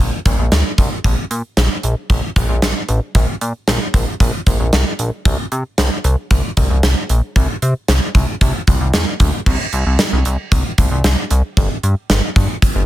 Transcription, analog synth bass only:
0.00 0.11 A#1 loud
0.26 0.37 A#1 loud
0.39 0.50 A#1 medium
0.52 0.63 D2 medium
0.78 0.90 C2 medium
1.05 1.16 A#1 loud
1.31 1.42 A#2 medium
1.57 1.69 A#1 loud
1.83 1.95 A#1 loud
2.10 2.21 A#1 loud
2.36 2.48 A#1 loud
2.49 2.61 A#1 loud
2.62 2.74 A#1 loud
2.89 3.00 A1 loud
3.15 3.27 A#1 loud
3.41 3.53 A#2 loud
3.68 3.79 A#1 loud
3.94 4.06 A#1 loud
4.20 4.32 A#1 loud
4.47 4.58 A#1 medium
4.60 4.71 A#1 medium
4.73 4.85 C2 loud
4.99 5.11 A#1 medium
5.25 5.37 C2 loud
5.52 5.63 C3 medium
5.78 5.90 C2 loud
6.04 6.16 C2 loud
6.31 6.42 C2 loud
6.57 6.69 C2 loud
6.70 6.82 C2 loud
6.83 6.95 C2 medium
7.10 7.21 A#1 loud
7.36 7.48 C2 loud
7.62 7.74 C3 loud
7.89 8.00 C2 loud
8.15 8.27 C2 loud
8.41 8.53 C2 loud
8.68 8.79 C2 medium
8.81 8.92 C2 medium
8.94 9.06 E2 medium
9.20 9.32 D2 loud
9.46 9.58 C2 loud
9.73 9.84 C2 loud
9.86 9.98 C2 loud
10.12 10.24 C2 medium
10.26 10.37 C2 medium
10.52 10.63 C2 loud
10.78 10.90 C2 loud
10.91 11.03 C2 loud
11.04 11.16 C2 loud
11.31 11.42 C2 loud
11.57 11.69 G1 loud
11.83 11.95 G2 loud
12.10 12.21 G1 loud
12.36 12.48 G2 loud
12.76 12.86 G1 medium

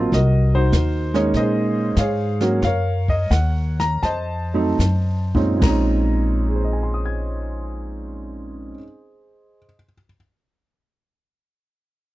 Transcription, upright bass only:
0.00 0.10 A1 medium
0.12 0.71 C2 medium
0.72 1.32 D#2 medium
1.34 1.95 A#2 medium
1.97 2.60 G#2 medium
2.62 3.29 F#2 medium
3.30 4.01 D#2 medium
4.03 4.77 F2 medium
4.79 5.59 F#2 medium
5.61 8.71 A#1 medium

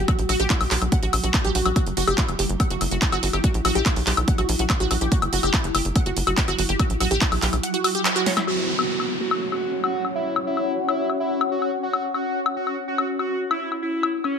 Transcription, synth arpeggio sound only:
0.08 0.17 F#4 medium
0.29 0.35 F#4 loud
0.40 0.46 G4 loud
0.50 0.59 E4 medium
0.71 0.75 G4 medium
0.92 0.98 F#5 medium
1.03 1.12 F#4 medium
1.24 1.30 F#4 medium
1.45 1.51 G4 loud
1.55 1.64 F#4 medium
1.66 1.72 F#4 medium
1.76 1.85 F#4 medium
1.97 2.03 F#4 loud
2.07 2.14 G4 loud
2.18 2.27 E4 medium
2.39 2.43 G4 medium
2.60 2.66 F#5 medium
2.70 2.79 F#4 medium
2.91 2.95 F#4 medium
3.12 3.16 F#4 loud
3.23 3.27 F#4 medium
3.33 3.42 G4 medium
3.44 3.53 F#4 medium
3.65 3.71 F#4 loud
3.75 3.81 G4 loud
3.86 3.95 E4 medium
4.07 4.10 G4 medium
4.28 4.34 F#5 medium
4.38 4.47 F#4 medium
4.59 4.63 F#4 medium
4.80 4.84 F#4 loud
4.91 4.94 F#4 medium
5.01 5.10 G4 medium
5.12 5.21 F#4 medium
5.33 5.39 F#4 loud
5.43 5.49 G4 loud
5.54 5.63 E4 medium
5.75 5.78 G4 medium
5.96 6.02 F#5 medium
6.06 6.15 F#4 medium
6.27 6.31 F#4 medium
6.48 6.52 F#4 loud
6.59 6.62 F#4 medium
6.69 6.78 G4 medium
6.79 6.89 F#4 medium
7.00 7.07 F#4 loud
7.11 7.17 G4 loud
7.21 7.31 E4 medium
7.42 7.46 G4 medium
7.63 7.69 F#5 medium
7.74 7.83 F#4 medium
7.84 7.88 F#4 medium
7.95 8.01 G4 loud
8.16 8.25 F#4 loud
8.26 8.32 C#5 medium
8.37 8.46 E4 medium

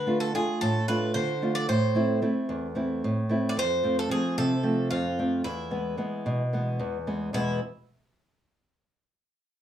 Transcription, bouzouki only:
0.00 0.20 B4 medium
0.20 0.33 A4 medium
0.35 0.59 G#4 medium
0.61 0.88 A4 medium
0.88 1.13 B4 medium
1.14 1.55 C5 medium
1.55 1.68 D5 medium
1.69 2.19 C5 medium
3.49 3.56 D5 medium
3.59 3.95 C5 loud
3.99 4.11 A4 medium
4.11 4.36 G#4 medium
4.38 4.88 A4 loud
4.91 5.41 F4 medium
5.44 6.76 E4 medium
7.34 7.59 E4 medium

